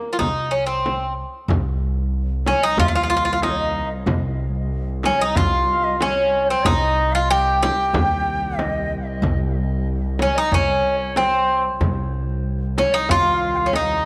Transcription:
Already playing: A#3
0.13 F4
0.19 C2 D#4, frame drum
0.51 C#4
0.66 C4
0.86 frame drum
1.48 C2, darbuka dum, frame drum
1.81 darbuka ka
1.97 darbuka ka
2.46 C#4 C#5, frame drum
2.62 D#4 D#5
2.77 D#2 F4 F5, frame drum, darbuka dum
2.88 F4
2.95 F4
3.03 F4
3.10 F4
3.17 F4
3.25 F4
3.33 F4
3.42 D#4 D#5, darbuka tek, frame drum
3.51 C#5
3.57 D#5
3.75 darbuka ka
4.06 C2, darbuka dum, frame drum
4.55 darbuka ka
5.03 C#4 C#5, darbuka tek, frame drum
5.20 D#4 D#5
5.35 C2 F4 F5, darbuka dum, frame drum
5.84 D#5
6.00 C#4 C#5, darbuka tek, frame drum
6.33 darbuka ka
6.48 C4 C5
6.64 C2 D#4 D#5, darbuka dum, frame drum
7.12 F4 F5
7.30 G4 G5
7.62 G4 G5, frame drum
7.94 D#2, darbuka dum, frame drum
8.59 D#5, darbuka tek, frame drum
8.91 darbuka ka
9.22 C2, darbuka dum, frame drum
9.55 darbuka ka
9.71 darbuka ka
9.87 darbuka ka
10.19 C#4 C#5, darbuka tek, frame drum
10.36 D#4 D#5, darbuka ka
10.52 C2 C#4 C#5, frame drum, darbuka dum
10.69 darbuka ka
11.00 C#5
11.16 C4 C5, darbuka tek, frame drum
11.49 darbuka ka
11.79 C2, frame drum, darbuka dum
12.14 darbuka ka
12.29 darbuka ka
12.77 C#4 C#5, darbuka tek, frame drum
12.93 D#4 D#5
13.09 D#2 F4 F5, frame drum, darbuka dum
13.54 F5 G5
13.66 C#4
13.73 D#4 D#5, darbuka tek, frame drum

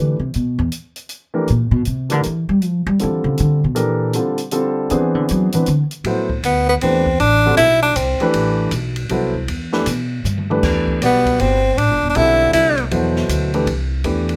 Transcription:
Already playing: D3 E3 A3 D4 G4 B4
0.19 C3
0.34 B2, closed hi-hat
0.59 E2
0.72 closed hi-hat
0.96 closed hi-hat
1.09 closed hi-hat
1.34 E3 A3 D4 G4 A#4
1.48 A#2, closed hi-hat
1.71 B2
1.85 C3, closed hi-hat
2.09 D3 E3 A3 D4 G4 A#4, closed hi-hat
2.23 E3, closed hi-hat
2.49 G3
2.62 F3, closed hi-hat
2.86 G3
2.99 D3 E3 G3 C4 F4 A4, closed hi-hat
3.24 C#3
3.38 D3, closed hi-hat
3.64 B2
3.75 A#2 E3 D4 G4 A4 A#4, closed hi-hat
4.13 D3 G3 C4 F4 A4, closed hi-hat
4.38 closed hi-hat
4.51 D3 G3 C4 F4 A4, closed hi-hat
4.90 E3 B3 C4 D4 G#4, closed hi-hat
5.15 D3
5.29 F#3, closed hi-hat
5.52 E3 B3 C4 D4 B4, closed hi-hat
5.66 D3, closed hi-hat
5.91 closed hi-hat
6.04 A2 F#3 B3 E4 A4 C5, ride
6.30 kick
6.43 D2 B3, hi-hat pedal, ride
6.69 B3
6.81 E2 E3 A3 C4 D4 G4 B4, ride
7.06 kick
7.20 A1 D4, ride
7.46 D3 G3 C4 F#4 A4
7.57 B1 E4, hi-hat pedal, ride
7.82 D4
7.96 C2 C4, hi-hat pedal, ride
8.20 E3 A3 D4 G4 B4, ride
8.34 A1, ride
8.71 B1, hi-hat pedal, ride
8.96 ride
9.09 C2 F#3 B3 E4 A4 C5, ride
9.35 kick
9.48 E2, ride
9.72 E3 A3 D4 G4 B4, snare
9.86 B2, hi-hat pedal, ride
10.24 G2, hi-hat pedal, mid tom
10.38 mid tom
10.50 E3 A3 D4 G4 B4, mid tom
10.63 E2, kick, snare, crash
10.88 kick
11.02 B1 G3 B3 F#4 B4 D5, hi-hat pedal, ride
11.26 kick, ride
11.40 G1 C4, ride
11.73 C4
11.78 A1 D4, ride
11.90 G1
12.03 E1
12.10 D4
12.15 B1 D3 G3 C4 E4 F#4 A4, ride
12.53 C2 E4, hi-hat pedal, ride
12.78 ride
12.91 E2 B2 F#3 E4 A4 C5, ride
13.16 snare
13.29 D2, hi-hat pedal, ride
13.54 E3 A3 D4 G4 B4, ride
13.66 C2, ride
14.04 E2 E3 A3 D4 G4 B4, ride
14.29 ride

